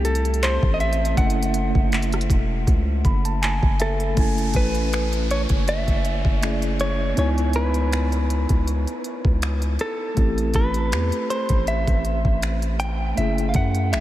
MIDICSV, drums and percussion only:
0, 0, Header, 1, 2, 480
1, 0, Start_track
1, 0, Key_signature, 3, "minor"
1, 0, Tempo, 750000
1, 751, Time_signature, 4, 2, 24, 8
1, 8961, End_track
2, 0, Start_track
2, 0, Title_t, "Drums"
2, 31, Note_on_c, 9, 42, 67
2, 95, Note_off_c, 9, 42, 0
2, 96, Note_on_c, 9, 42, 55
2, 160, Note_off_c, 9, 42, 0
2, 160, Note_on_c, 9, 42, 51
2, 216, Note_off_c, 9, 42, 0
2, 216, Note_on_c, 9, 42, 42
2, 274, Note_off_c, 9, 42, 0
2, 274, Note_on_c, 9, 42, 77
2, 279, Note_on_c, 9, 39, 122
2, 338, Note_off_c, 9, 42, 0
2, 343, Note_off_c, 9, 39, 0
2, 402, Note_on_c, 9, 36, 101
2, 466, Note_off_c, 9, 36, 0
2, 513, Note_on_c, 9, 42, 44
2, 577, Note_off_c, 9, 42, 0
2, 593, Note_on_c, 9, 42, 53
2, 657, Note_off_c, 9, 42, 0
2, 672, Note_on_c, 9, 42, 59
2, 736, Note_off_c, 9, 42, 0
2, 751, Note_on_c, 9, 36, 126
2, 752, Note_on_c, 9, 42, 68
2, 815, Note_off_c, 9, 36, 0
2, 816, Note_off_c, 9, 42, 0
2, 832, Note_on_c, 9, 42, 71
2, 896, Note_off_c, 9, 42, 0
2, 912, Note_on_c, 9, 42, 74
2, 976, Note_off_c, 9, 42, 0
2, 986, Note_on_c, 9, 42, 84
2, 1050, Note_off_c, 9, 42, 0
2, 1121, Note_on_c, 9, 36, 99
2, 1185, Note_off_c, 9, 36, 0
2, 1230, Note_on_c, 9, 42, 44
2, 1239, Note_on_c, 9, 39, 123
2, 1294, Note_off_c, 9, 42, 0
2, 1295, Note_on_c, 9, 42, 50
2, 1303, Note_off_c, 9, 39, 0
2, 1359, Note_off_c, 9, 42, 0
2, 1360, Note_on_c, 9, 42, 59
2, 1368, Note_on_c, 9, 37, 86
2, 1414, Note_off_c, 9, 42, 0
2, 1414, Note_on_c, 9, 42, 73
2, 1432, Note_off_c, 9, 37, 0
2, 1470, Note_on_c, 9, 36, 95
2, 1474, Note_off_c, 9, 42, 0
2, 1474, Note_on_c, 9, 42, 75
2, 1534, Note_off_c, 9, 36, 0
2, 1538, Note_off_c, 9, 42, 0
2, 1711, Note_on_c, 9, 36, 93
2, 1712, Note_on_c, 9, 42, 63
2, 1775, Note_off_c, 9, 36, 0
2, 1776, Note_off_c, 9, 42, 0
2, 1950, Note_on_c, 9, 42, 40
2, 1951, Note_on_c, 9, 36, 94
2, 2014, Note_off_c, 9, 42, 0
2, 2015, Note_off_c, 9, 36, 0
2, 2081, Note_on_c, 9, 42, 69
2, 2145, Note_off_c, 9, 42, 0
2, 2193, Note_on_c, 9, 42, 80
2, 2198, Note_on_c, 9, 39, 110
2, 2257, Note_off_c, 9, 42, 0
2, 2262, Note_off_c, 9, 39, 0
2, 2322, Note_on_c, 9, 36, 106
2, 2386, Note_off_c, 9, 36, 0
2, 2429, Note_on_c, 9, 46, 83
2, 2430, Note_on_c, 9, 42, 76
2, 2493, Note_off_c, 9, 46, 0
2, 2494, Note_off_c, 9, 42, 0
2, 2560, Note_on_c, 9, 42, 44
2, 2624, Note_off_c, 9, 42, 0
2, 2668, Note_on_c, 9, 42, 64
2, 2670, Note_on_c, 9, 36, 117
2, 2732, Note_off_c, 9, 42, 0
2, 2734, Note_off_c, 9, 36, 0
2, 2804, Note_on_c, 9, 42, 43
2, 2868, Note_off_c, 9, 42, 0
2, 2903, Note_on_c, 9, 42, 80
2, 2910, Note_on_c, 9, 36, 82
2, 2967, Note_off_c, 9, 42, 0
2, 2974, Note_off_c, 9, 36, 0
2, 3038, Note_on_c, 9, 42, 44
2, 3102, Note_off_c, 9, 42, 0
2, 3155, Note_on_c, 9, 42, 67
2, 3159, Note_on_c, 9, 26, 109
2, 3219, Note_off_c, 9, 42, 0
2, 3223, Note_off_c, 9, 26, 0
2, 3281, Note_on_c, 9, 42, 48
2, 3345, Note_off_c, 9, 42, 0
2, 3396, Note_on_c, 9, 42, 76
2, 3460, Note_off_c, 9, 42, 0
2, 3515, Note_on_c, 9, 42, 56
2, 3519, Note_on_c, 9, 36, 88
2, 3579, Note_off_c, 9, 42, 0
2, 3583, Note_off_c, 9, 36, 0
2, 3633, Note_on_c, 9, 42, 60
2, 3697, Note_off_c, 9, 42, 0
2, 3761, Note_on_c, 9, 36, 84
2, 3762, Note_on_c, 9, 42, 46
2, 3825, Note_off_c, 9, 36, 0
2, 3826, Note_off_c, 9, 42, 0
2, 3870, Note_on_c, 9, 42, 47
2, 3934, Note_off_c, 9, 42, 0
2, 3999, Note_on_c, 9, 36, 94
2, 4063, Note_off_c, 9, 36, 0
2, 4112, Note_on_c, 9, 42, 77
2, 4117, Note_on_c, 9, 26, 100
2, 4176, Note_off_c, 9, 42, 0
2, 4181, Note_off_c, 9, 26, 0
2, 4238, Note_on_c, 9, 42, 52
2, 4302, Note_off_c, 9, 42, 0
2, 4349, Note_on_c, 9, 42, 67
2, 4413, Note_off_c, 9, 42, 0
2, 4589, Note_on_c, 9, 42, 62
2, 4653, Note_off_c, 9, 42, 0
2, 4722, Note_on_c, 9, 42, 41
2, 4786, Note_off_c, 9, 42, 0
2, 4822, Note_on_c, 9, 42, 75
2, 4886, Note_off_c, 9, 42, 0
2, 4955, Note_on_c, 9, 42, 45
2, 5019, Note_off_c, 9, 42, 0
2, 5072, Note_on_c, 9, 42, 68
2, 5077, Note_on_c, 9, 26, 111
2, 5136, Note_off_c, 9, 42, 0
2, 5141, Note_off_c, 9, 26, 0
2, 5198, Note_on_c, 9, 42, 47
2, 5262, Note_off_c, 9, 42, 0
2, 5313, Note_on_c, 9, 42, 71
2, 5377, Note_off_c, 9, 42, 0
2, 5435, Note_on_c, 9, 42, 59
2, 5439, Note_on_c, 9, 36, 86
2, 5499, Note_off_c, 9, 42, 0
2, 5503, Note_off_c, 9, 36, 0
2, 5552, Note_on_c, 9, 42, 61
2, 5616, Note_off_c, 9, 42, 0
2, 5680, Note_on_c, 9, 42, 45
2, 5744, Note_off_c, 9, 42, 0
2, 5788, Note_on_c, 9, 42, 48
2, 5852, Note_off_c, 9, 42, 0
2, 5918, Note_on_c, 9, 36, 96
2, 5982, Note_off_c, 9, 36, 0
2, 6030, Note_on_c, 9, 42, 76
2, 6035, Note_on_c, 9, 26, 108
2, 6094, Note_off_c, 9, 42, 0
2, 6099, Note_off_c, 9, 26, 0
2, 6156, Note_on_c, 9, 42, 48
2, 6220, Note_off_c, 9, 42, 0
2, 6267, Note_on_c, 9, 42, 68
2, 6331, Note_off_c, 9, 42, 0
2, 6508, Note_on_c, 9, 42, 62
2, 6509, Note_on_c, 9, 36, 123
2, 6572, Note_off_c, 9, 42, 0
2, 6573, Note_off_c, 9, 36, 0
2, 6642, Note_on_c, 9, 42, 44
2, 6706, Note_off_c, 9, 42, 0
2, 6743, Note_on_c, 9, 42, 76
2, 6749, Note_on_c, 9, 36, 85
2, 6807, Note_off_c, 9, 42, 0
2, 6813, Note_off_c, 9, 36, 0
2, 6875, Note_on_c, 9, 42, 45
2, 6939, Note_off_c, 9, 42, 0
2, 6991, Note_on_c, 9, 42, 71
2, 6995, Note_on_c, 9, 26, 111
2, 7055, Note_off_c, 9, 42, 0
2, 7059, Note_off_c, 9, 26, 0
2, 7118, Note_on_c, 9, 42, 45
2, 7182, Note_off_c, 9, 42, 0
2, 7234, Note_on_c, 9, 42, 72
2, 7298, Note_off_c, 9, 42, 0
2, 7354, Note_on_c, 9, 42, 63
2, 7359, Note_on_c, 9, 36, 91
2, 7418, Note_off_c, 9, 42, 0
2, 7423, Note_off_c, 9, 36, 0
2, 7470, Note_on_c, 9, 42, 60
2, 7534, Note_off_c, 9, 42, 0
2, 7600, Note_on_c, 9, 36, 89
2, 7600, Note_on_c, 9, 42, 47
2, 7664, Note_off_c, 9, 36, 0
2, 7664, Note_off_c, 9, 42, 0
2, 7710, Note_on_c, 9, 42, 49
2, 7774, Note_off_c, 9, 42, 0
2, 7839, Note_on_c, 9, 36, 100
2, 7903, Note_off_c, 9, 36, 0
2, 7952, Note_on_c, 9, 42, 79
2, 7957, Note_on_c, 9, 26, 107
2, 8016, Note_off_c, 9, 42, 0
2, 8021, Note_off_c, 9, 26, 0
2, 8079, Note_on_c, 9, 42, 52
2, 8143, Note_off_c, 9, 42, 0
2, 8190, Note_on_c, 9, 42, 70
2, 8254, Note_off_c, 9, 42, 0
2, 8432, Note_on_c, 9, 42, 67
2, 8496, Note_off_c, 9, 42, 0
2, 8565, Note_on_c, 9, 42, 45
2, 8629, Note_off_c, 9, 42, 0
2, 8664, Note_on_c, 9, 42, 80
2, 8670, Note_on_c, 9, 36, 78
2, 8728, Note_off_c, 9, 42, 0
2, 8734, Note_off_c, 9, 36, 0
2, 8797, Note_on_c, 9, 42, 45
2, 8861, Note_off_c, 9, 42, 0
2, 8914, Note_on_c, 9, 42, 69
2, 8919, Note_on_c, 9, 26, 114
2, 8961, Note_off_c, 9, 26, 0
2, 8961, Note_off_c, 9, 42, 0
2, 8961, End_track
0, 0, End_of_file